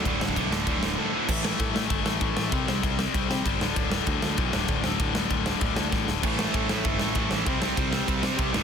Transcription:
<<
  \new Staff \with { instrumentName = "Distorted electric guitar" } { \clef bass \time 4/4 \key a \mixolydian \tempo 4 = 194 <d, a, d>4 <d, a, d>8 <d, a, d>8 <d, a, d>4 <d, a, d>8 <d, a, d>8 | r1 | r1 | r1 |
r1 | <a, e a>8 <a, e a>8 <a, e a>8 <a, e a>8 <a, e a>8 <a, e a>8 <a, e a>8 <a, e a>8 | <c g c'>8 <c g c'>8 <c g c'>8 <c g c'>8 <c g c'>8 <c g c'>8 <c g c'>8 <d, a, d>8 | }
  \new Staff \with { instrumentName = "Distorted electric guitar" } { \clef bass \time 4/4 \key a \mixolydian <d, a, d>2.~ <d, a, d>8 <d, a, d>8 | <a, e a>2~ <a, e a>8 <a, e a>8 <a, e a>4 | <c g c'>2~ <c g c'>8 <c g c'>8 <c g c'>8 <d, a, d>8~ | <d, a, d>2 <d, a, d>8 <d, a, d>4 <d, a, d>8~ |
<d, a, d>2 <d, a, d>8 <d, a, d>4 r8 | <a, e a>2~ <a, e a>8 <a, e a>8 <a, e a>4 | <c g c'>2~ <c g c'>8 <c g c'>8 <c g c'>8 <d, a, d>8 | }
  \new Staff \with { instrumentName = "Overdriven electric guitar" } { \clef bass \time 4/4 \key a \mixolydian <d, a, d>4 <d, a, d>8 <d, a, d>8 <d, a, d>4 <d, a, d>8 <d, a, d>8 | <a, e a>8 <a, e a>8 <a, e a>8 <a, e a>8 <a, e a>8 <a, e a>8 <a, e a>8 <a, e a>8 | <c g c'>8 <c g c'>8 <c g c'>8 <c g c'>8 <c g c'>8 <c g c'>8 <c g c'>8 <d, a, d>8 | <d, a, d>8 <d, a, d>8 <d, a, d>8 <d, a, d>8 <d, a, d>8 <d, a, d>8 <d, a, d>8 <d, a, d>8 |
<d, a, d>8 <d, a, d>8 <d, a, d>8 <d, a, d>8 <d, a, d>8 <d, a, d>8 <d, a, d>8 <d, a, d>8 | <a, e a>8 <a, e a>8 <a, e a>8 <a, e a>8 <a, e a>8 <a, e a>8 <a, e a>8 <a, e a>8 | <c g c'>8 <c g c'>8 <c g c'>8 <c g c'>8 <c g c'>8 <c g c'>8 <c g c'>8 <d, a, d>8 | }
  \new Staff \with { instrumentName = "Picked electric bass" } { \clef bass \time 4/4 \key a \mixolydian d,,8 d,,8 b,,8 d,,8 d,,8 d,,8 r4 | a,,4 a,8 a,8 g,,8 a,,8 a,,8 a,,8 | c,8 c,8 c,4 c,8 c8 g,,8 d,,8 | d,,4 d,8 d,8 b,,8 d,,8 d,,8 d,,8 |
d,,8 d,,8 d,,4 d,,8 d,8 a,,8 d,,8 | a,,4 a,8 a,8 g,,8 a,,8 a,,8 a,,8 | c,8 c,8 c,4 c,8 c8 c,8 d,,8 | }
  \new DrumStaff \with { instrumentName = "Drums" } \drummode { \time 4/4 <cymc bd>8 sn16 bd16 <cymc bd>8 sn8 <cymc bd>8 sn8 r4 | <cymc bd>8 sn8 <bd cymr>8 sn8 <bd cymr>8 sn8 <bd cymr>8 sn8 | <bd cymr>8 sn8 <bd cymr>8 sn8 <bd cymr>8 sn8 <bd cymr>8 sn8 | <bd cymr>8 sn8 <bd cymr>8 sn8 <bd cymr>8 sn8 <bd cymr>8 sn8 |
<bd cymr>8 sn8 <bd cymr>8 sn8 <bd cymr>8 sn8 <bd sn>8 sn8 | <cymc bd>8 sn8 <bd cymr>8 sn8 <bd cymr>8 sn8 <bd cymr>8 sn8 | <bd cymr>8 sn8 <bd cymr>8 sn8 <bd cymr>8 sn8 <bd cymr>8 sn8 | }
>>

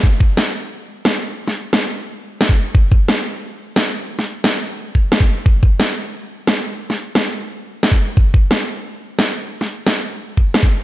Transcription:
\new DrumStaff \with { instrumentName = "Drums" } \drummode { \time 4/4 \tempo 4 = 177 bd8 bd8 sn4 r4 sn4 | r16 sn8. sn4 r4 sn16 bd8. | bd8 bd8 sn4 r4 sn4 | r16 sn8. sn4 r8 bd8 sn16 bd8. |
bd8 bd8 sn4 r4 sn4 | r16 sn8. sn4 r4 sn16 bd8. | bd8 bd8 sn4 r4 sn4 | r16 sn8. sn4 r8 bd8 sn16 bd8. | }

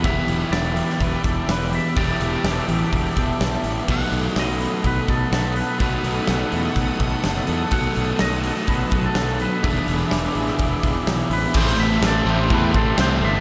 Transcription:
<<
  \new Staff \with { instrumentName = "Analog synth pad" } { \time 4/4 \key e \minor \tempo 4 = 125 << { <g' e'' d'''>1~ | <g' e'' d'''>1 | <a' fis'' dis'''>1~ | <a' fis'' dis'''>1~ |
<a' fis'' dis'''>1 | <gis' e'' d'''>1 | \key a \dorian <g' e'' c'''>1 | } \\ { b''1 | a''1 | b''1~ | b''2 a''2~ |
a''1 | b''1 | a''1 | } >> }
  \new Staff \with { instrumentName = "Clean electric guitar" } { \time 4/4 \key e \minor e''4 d''4 b'8 a'8 b'8 e''8 | d''4 r2. | fis''4 dis''4 b'8 a'8 a'8 b'8 | b'4 r2. |
fis''4 dis''4 b'8. a'8. b'8 | e''2. r8 b'8 | \key a \dorian c''8 e''8 d''8 c''8 b'8 a'8 c''8 e''8 | }
  \new Staff \with { instrumentName = "Overdriven electric guitar" } { \time 4/4 \key e \minor <e b e' g'>1 | <e b e' g'>1 | <b, fis a dis' fis'>1 | <b, fis a dis' fis'>1 |
<b, fis a dis' fis'>1 | <e b d' gis'>1 | \key a \dorian <a, e a c' e' c''>4. <a, e a c' e' c''>4. <a, e a c' e' c''>4 | }
  \new Staff \with { instrumentName = "Distorted electric guitar" } { \clef bass \time 4/4 \key e \minor <e, b, e>8 <b, e>8 <e, b, e>8 <b, e>8 <e, b, e>8 <b, e>8 <e, b, e>8 <b, e>8 | <e, b, e>8 <b, e>8 <e, b, e>8 <b, e>8 <e, b, e>8 <b, e>8 <e, b, e>8 <b, e>8 | <b, fis b>8 <fis b>8 <b, fis b>8 <fis b>8 <b, fis b>8 <fis b>8 <b, fis b>8 <fis b>8 | <b, fis b>8 <fis b>8 <b, fis b>8 <fis b>8 <b, fis b>8 <fis b>8 <b, fis b>8 <fis b>8 |
<b, fis b>8 <fis b>8 <b, fis b>8 <fis b>8 <b, fis b>8 <fis b>8 <b, fis b>8 <fis b>8 | <e, b, e>8 <b, e>8 <e, b, e>8 <b, e>8 <e, b, e>8 <b, e>8 <e, b, e>8 <b, e>8 | \key a \dorian <a, e a>8 <e a>8 <a, e a>8 <e a>8 <a, e a>8 <e a>8 <a, e a>8 <e a>8 | }
  \new Staff \with { instrumentName = "Fingered electric bass" } { \clef bass \time 4/4 \key e \minor e,,8 e,,8 e,,4 e,,8 e,,8 e,,4 | e,,8 e,,8 e,,8 a,,8 e,,8 e,,8 b,,8 a,,8 | b,,8 b,,8 b,,4 b,,8 b,,8 b,,4 | b,,8 b,,8 b,,8 e,8 b,,8 b,,8 fis,,8 e,8 |
b,,8 b,,8 b,,4 b,,8 b,,8 b,,4 | e,,8 e,,8 e,,8 a,,8 e,,8 e,,8 b,,8 a,,8 | \key a \dorian a,,8 a,,8 a,,8 a,,8 e,8 a,,8 c,8 g,,8 | }
  \new DrumStaff \with { instrumentName = "Drums" } \drummode { \time 4/4 <hho bd>8 hho8 <hho sn>8 hho16 sn16 <hho bd>8 <hho bd>8 <hho sn>16 sn16 hho8 | <hho bd>8 hho8 <hho sn>8 hho8 <hho bd>8 <hho bd>8 <hho sn>16 sn16 hho8 | <cymc bd>8 hho8 <hho sn>8 hho8 <hho bd>8 <hho bd>8 <hho sn>16 sn16 hho8 | <hho bd>8 hho8 <hho sn>8 hho8 <hho bd>8 <hho bd>8 <hho sn>16 sn16 hho8 |
<hho bd>8 hho8 <hho sn>8 hho16 sn16 <hho bd>8 <hho bd>8 <hho sn>16 sn16 hho8 | <hho bd>8 hho8 <hho sn>8 hho16 sn16 <hho bd>8 <hho bd>8 <hho sn>16 sn16 hho8 | <cymc bd>4 <cymc sn>4 <cymc bd>8 bd8 <cymc sn>4 | }
>>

